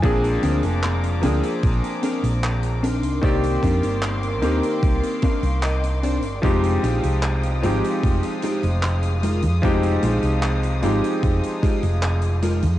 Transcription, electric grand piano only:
\new Staff \with { instrumentName = "Electric grand piano" } { \time 4/4 \key f \dorian \tempo 4 = 75 <f bes c' d' aes'>4. <f bes c' d' aes'>2 r8 | <ees bes c' g' d''>4. <ees bes c' g'>2~ <ees bes c' g'>8 | <f aes c' ees' g'>4. <f aes c' ees' g'>2~ <f aes c' ees' g'>8 | <f aes c' ees' g'>4. <f aes c' ees' g'>2~ <f aes c' ees' g'>8 | }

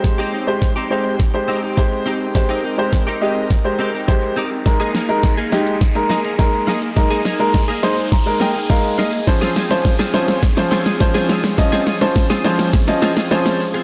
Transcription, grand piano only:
\new Staff \with { instrumentName = "Grand piano" } { \time 4/4 \key aes \major \tempo 4 = 104 << { r1 | r1 | r1 | r4. c'''8 bes''8 g''8 f''8 ees''8 |
r1 | r1 | } \\ { <aes g' c''>8 r16 <aes g' c''>8 r16 <aes g' c''>8 r16 <aes g' c''>8 r16 <aes g' c''>8 r8 | <aes g' c''>8 r16 <aes g' c''>8 r16 <aes g' ees''>8 r16 <aes g' c''>8 r16 <aes g' c''>8 r8 | <aes ees' bes'>8 r16 <aes ees' bes'>8 r16 <aes ees' g'>8 r16 <aes ees' bes'>8 r16 <aes ees' bes'>8 r8 | <aes ees' bes'>8 r16 <aes ees' bes'>8 r16 <aes ees' c''>8 r16 <aes ees' bes'>8 r16 <aes ees' bes'>8 r8 |
<f des' c''>8 r16 <f des' c''>8 r16 <f des' c''>8 r16 <f des' c''>8 r16 <f des' c''>8 r8 | <f des' ees''>8 r16 <f des' c''>8 r16 <f des' c''>8 r16 <f des' ees''>8 r16 <f des' c''>8 r8 | } >> }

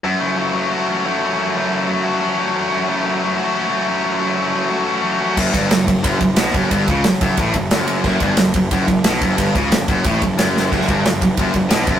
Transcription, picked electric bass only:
\new Staff \with { instrumentName = "Picked electric bass" } { \clef bass \time 4/4 \key fis \minor \tempo 4 = 180 r1 | r1 | r1 | r1 |
fis,,8 g,,8 fis,,8 fis,,8 fis,,8 fis,,8 b,,8 fis,,8 | g,,8 cis,8 fis,,8 fis,,8 a,,8 fis,,8 fis,,4 | fis,,8 g,,8 fis,,8 fis,,8 fis,,8 fis,,8 b,,8 fis,,8 | g,,8 cis,8 fis,,8 fis,,8 a,,8 fis,,8 fis,,4 |
fis,,8 g,,8 fis,,8 fis,,8 fis,,8 fis,,8 b,,8 fis,,8 | }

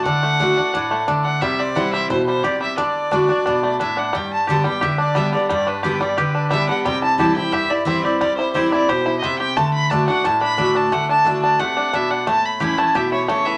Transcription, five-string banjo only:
\new Staff \with { instrumentName = "Five-string banjo" } { \time 4/4 \key d \mixolydian \tempo 4 = 177 <a d'>8 a8 d'8 d'8 d'8 a8 d'8 d'8 | g8 c'8 e'8 g8 e'8 g8 g'8 g8 | d'4 d'8 d'8 d'8 a8 d'8 d'8 | g4 g'8 g8 g'8 d'8 g8 d8 |
g8 d'8 g'8 g8 g'8 d'8 g8 d8 | g8 e'8 g'8 e'8 g'8 e'8 c'8 g'8 | g8 e'8 g'8 e'8 g'8 e'8 c'8 g'8 | a4 d'8 d'8 a8 d'8 d'8 d'8 |
a8 d'8 d'8 d'8 a8 d'8 d'8 d'8 | a4 g'8 a8 g'8 e'8 a8 e8 | }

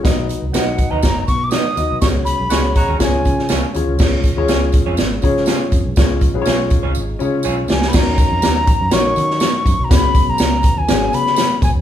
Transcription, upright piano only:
\new Staff \with { instrumentName = "Upright piano" } { \time 4/4 \key cis \mixolydian \tempo 4 = 122 <dis' fis' b' dis''>8. r16 <dis' fis' b' dis''>4. r4 <dis' fis' b' dis''>8 | <cis' fis' gis' cis''>8. r16 <cis' fis' gis' cis''>4 <cis' eis' gis' cis''>4~ <cis' eis' gis' cis''>16 r16 <cis' eis' gis' cis''>8 | <cis' eis' gis' cis''>8 r16 <cis' eis' gis' cis''>4~ <cis' eis' gis' cis''>16 r8 <cis' eis' gis' cis''>4~ <cis' eis' gis' cis''>16 r16 | <cis' eis' gis' cis''>8 r16 <cis' eis' gis' b' cis''>4~ <cis' eis' gis' b' cis''>16 r8 <cis' eis' gis' cis''>4~ <cis' eis' gis' cis''>16 r16 |
<cis' dis' fis' ais' cis''>4. r8 <cis' dis' fis' ais' cis''>4. r8 | <b cis' fis' gis' b'>4. r8 <b cis' fis' gis' b'>4. r8 | }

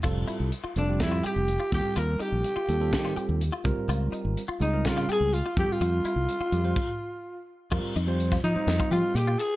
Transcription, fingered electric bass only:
\new Staff \with { instrumentName = "Fingered electric bass" } { \clef bass \time 4/4 \key f \mixolydian \tempo 4 = 125 f,,8 r16 c,16 r8 f,,8 f,8 r16 f,,8 r16 ees,16 r16 | ees,8 r16 bes,,16 r8 ees,8 ees8 r16 ees,8 r16 des,16 r16 | des,8 r16 aes,,16 r8 des,8 des8 r16 des,8 r16 f,16 r16 | f,8 r16 c,16 r8 f,8 r2 |
f,16 r16 f,4 f16 r16 f,16 r16 f16 r16 bes,8 r8 | }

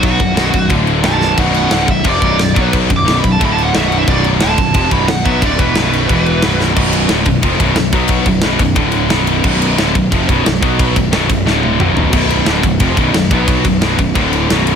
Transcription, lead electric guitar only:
\new Staff \with { instrumentName = "Lead electric guitar" } { \time 4/4 \key b \phrygian \tempo 4 = 178 fis'2 r4 a''4 | fis''8 fis''8 fis''8 e''8 d''2 | \tuplet 3/2 { r4 d'''8~ d'''8 b''8 a''8 b''8 a''8 fis''8 e''8 fis''8 e''8 } | d''8 r8 a''4. b''8 fis''8 e''8 |
d''8 b'2. r8 | r1 | r1 | r1 |
r1 | r1 | r1 | }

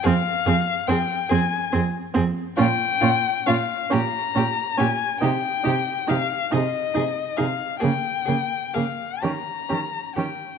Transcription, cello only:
\new Staff \with { instrumentName = "Cello" } { \clef bass \time 6/8 \key bes \dorian \tempo 4. = 46 f,8 f,8 f,8 f,8 f,8 f,8 | bes,8 bes,8 bes,8 bes,8 bes,8 bes,8 | c8 c8 c8 c8 c8 c8 | des8 des8 des8 ees8 ees8 ees8 | }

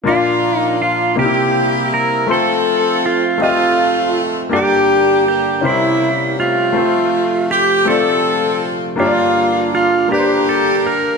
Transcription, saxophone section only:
\new Staff \with { instrumentName = "Saxophone section" } { \time 6/8 \key f \mixolydian \tempo 4. = 54 << { f'4 f'8 g'4 bes'8 | a'4 f'8 f'4 r8 | g'4 g'8 e'4 f'8~ | f'4 g'8 a'4 r8 |
f'4 f'8 g'4 bes'8 | } \\ { <bes d'>4. <bes e'>4. | <c' f'>4. <a c'>4. | <bes d'>4. <g bes>4 <a c'>8~ | <a c'>4 r8 <c' f'>4. |
<bes d'>4. <bes d'>4. | } >> }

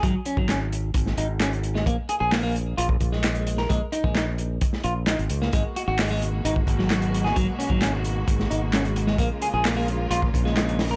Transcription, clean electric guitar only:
\new Staff \with { instrumentName = "Clean electric guitar" } { \time 4/4 \key gis \dorian \tempo 4 = 131 fis16 r16 cis'16 fis16 cis'16 r4 r16 dis'16 r16 cis'16 r8 gis16 | ais16 r16 gis'16 gis'16 ais16 ais16 r8 eis'16 r8 gis4 ais'16 | gis16 r16 dis'16 gis16 dis'16 r4 r16 eis'16 r16 dis'16 r8 ais16 | gis16 r16 fis'16 fis'16 gis16 gis16 r8 dis'16 r8 fis4 gis'16 |
fis16 r16 cis'16 fis16 cis'16 r4 r16 dis'16 r16 cis'16 r8 gis16 | ais16 r16 gis'16 gis'16 ais16 ais16 r8 eis'16 r8 gis4 ais'16 | }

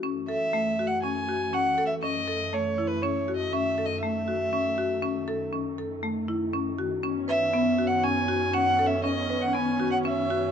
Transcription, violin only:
\new Staff \with { instrumentName = "Violin" } { \time 7/4 \key fis \dorian \tempo 4 = 120 r8 e''8~ \tuplet 3/2 { e''4 fis''8 } gis''4 \tuplet 3/2 { fis''4 e''8 } dis''4 \tuplet 3/2 { cis''4 b'8 cis''4 dis''8 } | \tuplet 3/2 { e''4 dis''8 } e''2. r2. | r8 e''8~ \tuplet 3/2 { e''4 fis''8 } gis''4 \tuplet 3/2 { fis''4 e''8 } dis''8. fis''16 gis''8. fis''16 e''4 | }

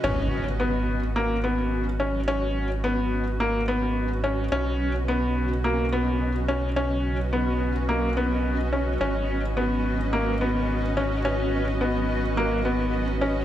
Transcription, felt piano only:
\new Staff \with { instrumentName = "Felt piano" } { \time 4/4 \key gis \minor \tempo 4 = 107 cis'4 b4 ais8 b4 cis'8 | cis'4 b4 ais8 b4 cis'8 | cis'4 b4 ais8 b4 cis'8 | cis'4 b4 ais8 b4 cis'8 |
cis'4 b4 ais8 b4 cis'8 | cis'4 b4 ais8 b4 cis'8 | }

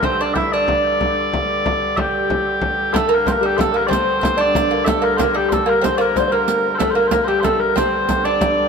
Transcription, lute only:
\new Staff \with { instrumentName = "Lute" } { \time 6/8 \key g \minor \tempo 4. = 124 c'8 d'8 e'8 d'4.~ | d'2. | g2 r4 | a8 bes4 g8 a8 bes8 |
c'4 c'8 d'4 bes8 | a8 bes8 bes8 g4 bes8 | c'8 bes4 bes4 r8 | a8 bes8 bes8 g8 a4 |
c'4. d'4. | }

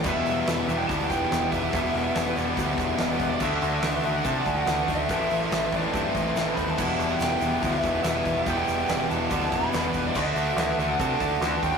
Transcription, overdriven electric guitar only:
\new Staff \with { instrumentName = "Overdriven electric guitar" } { \clef bass \time 4/4 \key e \minor \tempo 4 = 143 <e, b, e g b e'>4. <e, b, e g b e'>4. <e, b, e g b e'>4 | <e, b, e g b e'>4. <e, b, e g b e'>4. <e, b, e g b e'>4 | <d a d' fis'>4. <d a d' fis'>4. <d a d' fis'>4 | <a, e a c' e'>4. <a, e a c' e'>4. <a, e a c' e'>4 |
<e, b, e g b e'>4. <e, b, e g b e'>4. <e, b, e g b e'>4 | <e, b, e g b e'>4. <e, b, e g b e'>4. <e, b, e g b e'>4 | <d a d' fis'>4. <d a d' fis'>4. <d a d' fis'>4 | }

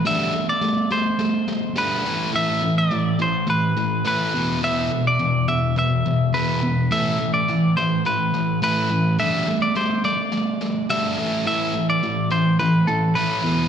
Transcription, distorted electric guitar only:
\new Staff \with { instrumentName = "Distorted electric guitar" } { \clef bass \time 4/4 \key a \minor \tempo 4 = 105 <g a d'>8 <g a>8 <g a>8 <g a>8 <g a>8 <g a>8 <g a d'>8 <a, e a>8 | <a, e a>8 <a, e>8 <a, e>8 <a, e>8 <a, e>8 <a, e>8 <a, e a>8 <e, b, e>8 | <e, b, e>8 <e, b,>8 <e, b,>8 <e, b,>8 <e, b,>8 <e, b,>8 <e, b, e>8 <e, b,>8 | <a, e a>8 <a, e>8 <a, e>8 <a, e>8 <a, e>8 <a, e>8 <a, e a>8 <a, e>8 |
<g a d'>8 <g a>8 <g a>8 <g a>8 <g a>8 <g a>8 <g a d'>8 <a, e a>8 | <a, e a>8 <a, e>8 <a, e>8 <a, e>8 <a, e>8 <a, e>8 <a, e a>8 <e, b, e>8 | }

